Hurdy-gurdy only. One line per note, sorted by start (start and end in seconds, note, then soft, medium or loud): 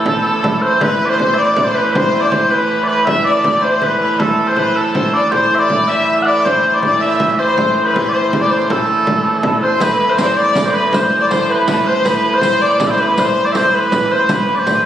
0.00 0.83 A2 medium
0.00 0.83 E3 medium
0.83 5.34 A2 medium
0.83 5.34 E3 medium
5.34 9.83 A2 medium
5.34 9.83 E3 medium
9.83 14.30 A2 medium
9.83 14.30 E3 medium
14.30 14.86 A2 medium
14.30 14.86 E3 medium